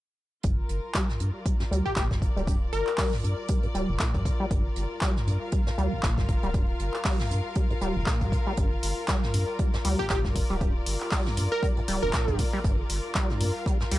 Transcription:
0.43 analog synth bass G1, acid bass G2, string section F4, kick, closed hi-hat
0.53 string section A#4
0.69 analog synth bass G1, closed hi-hat
0.94 acid bass G3, kick, snare, clap, closed hi-hat
1.09 acid bass G2, snare
1.20 analog synth bass G2, acid bass A#2, closed hi-hat
1.34 string section D5
1.45 acid bass G3, kick, closed hi-hat
1.60 acid bass G2, snare
1.71 analog synth bass D2, acid bass G3, closed hi-hat
1.86 acid bass G1, digital synth lead G4
1.96 analog synth bass G1, acid bass A#2, digital synth lead G4, kick, snare, clap, closed hi-hat
2.11 acid bass G2, kick, snare
2.22 acid bass A#2, kick, closed hi-hat
2.36 analog synth bass D1, acid bass G3, closed hi-hat
2.47 acid bass G2, kick, closed hi-hat
2.73 analog synth bass G1, digital synth lead A#4, closed hi-hat
2.87 clap
2.98 acid bass G3, kick, snare, clap, open hi-hat
3.12 acid bass G2, snare
3.24 analog synth bass G2, acid bass A#2, closed hi-hat
3.48 acid bass G3, kick, closed hi-hat
3.63 acid bass G2, closed hi-hat
3.74 analog synth bass D1, acid bass G3, closed hi-hat
3.89 analog synth bass F1, acid bass G1
3.99 acid bass A#2, kick, snare, clap, closed hi-hat
4.14 analog synth bass A#1, acid bass G2, kick, closed hi-hat
4.25 acid bass A#2, kick, closed hi-hat
4.40 acid bass G3
4.51 analog synth bass G1, acid bass G2, kick, closed hi-hat
4.76 analog synth bass G1, closed hi-hat
5.01 acid bass G3, kick, snare, clap, closed hi-hat
5.16 acid bass G2, snare
5.27 analog synth bass G2, acid bass A#2, closed hi-hat
5.41 string section F5
5.52 acid bass G3, kick, closed hi-hat
5.66 acid bass G2, snare
5.78 analog synth bass D2, acid bass G3, closed hi-hat
5.92 acid bass G1
6.03 analog synth bass G1, acid bass A#2, kick, snare, clap, closed hi-hat
6.18 acid bass G2, kick, snare
6.28 acid bass A#2, kick, closed hi-hat
6.43 analog synth bass D1, acid bass G3, closed hi-hat
6.54 acid bass G2, kick, closed hi-hat
6.79 analog synth bass G1, closed hi-hat
6.94 clap
7.05 acid bass G3, kick, snare, clap, open hi-hat
7.19 acid bass G2, snare
7.30 analog synth bass G2, acid bass A#2, closed hi-hat
7.55 acid bass G3, kick, closed hi-hat
7.70 acid bass G2, closed hi-hat
7.81 analog synth bass D1, acid bass G3, closed hi-hat
7.96 analog synth bass F1, acid bass G1
8.06 acid bass A#2, kick, snare, clap, closed hi-hat
8.21 analog synth bass A#1, acid bass G2, kick, closed hi-hat
8.32 acid bass A#2, kick, closed hi-hat
8.47 acid bass G3
8.57 analog synth bass G1, acid bass G2, kick, closed hi-hat
8.83 analog synth bass G1, closed hi-hat, open hi-hat
9.08 acid bass G3, kick, snare, clap, closed hi-hat
9.23 acid bass G2, snare
9.34 analog synth bass G2, acid bass A#2, closed hi-hat, open hi-hat
9.48 string section D5
9.59 acid bass G3, kick, closed hi-hat
9.73 acid bass G2, snare
9.85 analog synth bass D2, acid bass G3, closed hi-hat, open hi-hat
9.99 acid bass G1, digital synth lead G4
10.10 analog synth bass G1, acid bass A#2, digital synth lead G4, kick, snare, clap, closed hi-hat
10.25 acid bass G2, kick, snare
10.35 acid bass A#2, kick, closed hi-hat, open hi-hat
10.50 analog synth bass D1, acid bass G3, closed hi-hat
10.61 acid bass G2, kick, closed hi-hat
10.86 analog synth bass G1, closed hi-hat, open hi-hat
11.00 clap
11.11 acid bass G3, kick, snare, clap, open hi-hat
11.25 acid bass G2, snare
11.37 analog synth bass G2, acid bass A#2, closed hi-hat, open hi-hat
11.52 digital synth lead A#4
11.63 acid bass G3, kick, closed hi-hat
11.77 acid bass G2, closed hi-hat
11.88 analog synth bass D1, acid bass G3, closed hi-hat, open hi-hat
12.03 analog synth bass F1, acid bass G1, digital synth lead A#4
12.13 acid bass A#2, kick, snare, clap, closed hi-hat
12.28 analog synth bass A#1, acid bass G2, kick, closed hi-hat
12.38 acid bass A#2, kick, closed hi-hat, open hi-hat
12.53 acid bass G3
12.64 analog synth bass G1, acid bass G2, kick, closed hi-hat
12.89 analog synth bass G1, closed hi-hat, open hi-hat
13.15 acid bass G3, kick, snare, clap, closed hi-hat
13.30 acid bass G2, snare
13.41 analog synth bass G2, acid bass A#2, closed hi-hat, open hi-hat
13.54 string section F5
13.66 acid bass G3, kick, closed hi-hat
13.80 acid bass G2, snare
13.91 analog synth bass D2, acid bass G3, closed hi-hat, open hi-hat

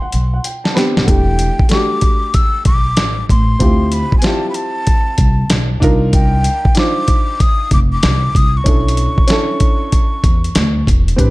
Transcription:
Already playing: flute C6
0.02 grand piano F#5, muted upright bass stroke
0.12 upright bass B1, closed hi-hat
0.34 grand piano F#5
0.44 grand piano G5, closed hi-hat
0.64 grand piano A5, snare
0.74 grand piano B3 C4 D4 G4 B5, snare, closed hi-hat
0.97 upright bass B1, snare
1.04 grand piano A3 D4, flute F#5
1.08 upright bass E1, grand piano E4 G4, flute G5, kick, closed hi-hat
1.39 closed hi-hat
1.59 kick
1.69 grand piano A3 D4 F#4 G4, flute D6, snare, closed hi-hat
2.01 kick, closed hi-hat
2.34 flute E6, kick, closed hi-hat
2.65 upright bass B1, flute D6, kick, closed hi-hat
2.97 upright bass A1, snare, closed hi-hat
3.29 upright bass A1, flute C6, kick, closed hi-hat
3.59 upright bass D2, grand piano C4 E4 F4 G4, kick, closed hi-hat
3.92 flute B5, closed hi-hat
4.12 kick
4.18 grand piano C4, flute G#5, closed hi-hat
4.24 grand piano E4 F4 G4, flute A5, snare
4.50 flute B5
4.54 flute A5, closed hi-hat
4.87 kick, closed hi-hat
5.18 upright bass C2, kick, closed hi-hat
5.50 upright bass B1, snare, closed hi-hat
5.80 upright bass C2, grand piano D4 D#4 F4 A#4, kick, closed hi-hat
6.13 flute G5, kick, closed hi-hat
6.44 closed hi-hat
6.65 kick
6.75 grand piano D4 D#4 F4 C5, flute D6, snare, closed hi-hat
7.08 kick, closed hi-hat
7.40 flute D#6, kick, closed hi-hat
7.71 upright bass F1, flute D6, kick, closed hi-hat
7.92 flute D6
8.03 upright bass C2, snare, closed hi-hat
8.35 upright bass C2, flute D#6, kick, closed hi-hat
8.57 flute C#6
8.64 upright bass B1, grand piano C#4 D4 E4 A4, kick, closed hi-hat
8.88 closed hi-hat
8.97 closed hi-hat
9.18 kick
9.27 grand piano C#4 D4 E4 A4, snare, closed hi-hat
9.60 kick, closed hi-hat
9.92 kick, closed hi-hat
10.24 upright bass E2, kick, closed hi-hat
10.44 closed hi-hat
10.55 upright bass D2, snare, closed hi-hat
10.87 upright bass E1, kick, closed hi-hat
11.08 closed hi-hat
11.16 upright bass A1, grand piano C4 D4 G4 B4, kick, closed hi-hat

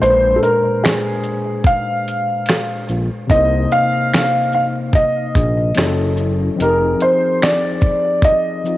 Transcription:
Already playing: tine electric piano A#2
0.00 analog synth bass A#1, tine electric piano G#3 D4 B4, upright piano C5, closed hi-hat
0.10 tine electric piano C5
0.36 upright piano A4
0.43 upright piano A#4, closed hi-hat, shaker
0.84 upright piano G#4, finger snap, snare, closed hi-hat
1.23 shaker
1.64 upright piano F5, kick, closed hi-hat
2.08 closed hi-hat, shaker
2.46 finger snap, snare, closed hi-hat
2.89 analog synth bass A#1, shaker
3.27 analog synth bass C2, tine electric piano C3 A#3, upright piano D#5, kick
3.31 tine electric piano D#4 C5, closed hi-hat
3.72 upright piano F5, closed hi-hat, shaker
4.13 finger snap, snare, closed hi-hat
4.52 upright piano F5, shaker
4.93 upright piano D#5, kick, closed hi-hat
5.35 analog synth bass A#1, kick, closed hi-hat, shaker
5.75 analog synth bass F#1, tine electric piano F#3 C#4 E4, finger snap, snare, closed hi-hat
5.79 tine electric piano G#4
5.85 tine electric piano A4
6.17 shaker
6.56 analog synth bass F1, tine electric piano F3 C4
6.60 tine electric piano D#4 G4, upright piano A#4, closed hi-hat
6.69 tine electric piano G#4
7.00 upright piano C5, closed hi-hat, shaker
7.42 upright piano D5, finger snap, snare, closed hi-hat
7.81 kick, shaker
8.22 upright piano D#5, kick, closed hi-hat
8.64 tine electric piano F3 C4 D#4 F4, shaker

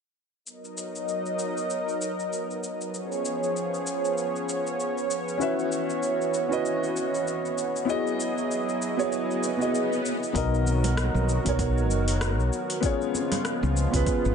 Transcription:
0.45 analog synth pad F#3 B3 D#4 A#4 D#5, shaker
0.65 shaker
0.78 shaker
0.95 shaker
1.08 shaker
1.26 shaker
1.39 shaker
1.57 shaker
1.70 shaker
1.89 shaker
2.02 shaker
2.20 shaker
2.33 shaker
2.51 shaker
2.64 shaker
2.81 shaker
2.93 analog synth pad F3 C#4 G#4 C#5, shaker
3.12 shaker
3.25 shaker
3.43 shaker
3.56 shaker
3.74 shaker
3.87 shaker
4.05 shaker
4.18 shaker
4.36 shaker
4.49 shaker
4.67 shaker
4.80 shaker
4.98 shaker
5.11 shaker
5.28 shaker
5.38 analog synth pad E3 F#4, grand piano C#4 E4 F#4, shaker
5.42 grand piano B4 E5
5.59 shaker
5.72 shaker
5.90 shaker
6.03 shaker
6.21 shaker
6.34 shaker
6.48 grand piano C#4 E4 F#4 B4
6.52 grand piano D#5, shaker
6.66 shaker
6.84 shaker
6.97 shaker
7.15 shaker
7.28 shaker
7.45 shaker
7.58 shaker
7.76 shaker
7.85 analog synth pad F#3 E4 G#4 D#5, grand piano B3 E4 F#4 G#4
7.89 grand piano D#5, shaker
8.07 shaker
8.20 shaker
8.38 shaker
8.51 shaker
8.69 shaker
8.82 shaker
8.97 grand piano B3 E4 F#4 G#4 C#5, shaker
9.11 swell, shaker
9.31 shaker
9.43 shaker
9.57 grand piano B3 E4 F#4 G#4
9.62 grand piano D#5, shaker
9.75 shaker
9.93 shaker
10.06 shaker
10.23 shaker
10.33 fretless electric bass B1, analog synth pad D#3 F#3 B3 F#4 A#4, grand piano B3 D#4 F#4 A#4, kick, open hi-hat, shaker
10.37 grand piano D#5
10.54 shaker
10.67 high conga, shaker
10.84 open hi-hat, low conga, shaker
10.97 cross-stick, open hi-hat, shaker
11.14 fretless electric bass B1, high conga, low conga, shaker
11.29 shaker
11.44 fretless electric bass B1, grand piano B3 D#4 F#4 A#4, kick, open hi-hat, shaker
11.49 grand piano C#5
11.59 kick, open hi-hat, shaker
11.78 shaker
11.90 fretless electric bass F#1, shaker
12.08 open hi-hat, shaker
12.21 cross-stick, open hi-hat, shaker
12.39 fretless electric bass B1, shaker
12.53 shaker
12.70 open hi-hat, shaker
12.81 analog synth pad C#3 G#3 F4, grand piano B3 C#4 F4 G#4, kick, open hi-hat, shaker
12.85 analog synth pad F3, grand piano C#5
13.02 shaker
13.15 high conga, shaker
13.32 cross-stick, open hi-hat, low conga, shaker
13.45 cross-stick, open hi-hat, shaker
13.63 fretless electric bass C#2, high conga, low conga, shaker
13.77 shaker
13.91 fretless electric bass C#2, grand piano B3 C#4 F4 G#4, kick, open hi-hat, shaker
13.96 grand piano B4
14.06 kick, open hi-hat, shaker
14.25 fretless electric bass G#1, shaker

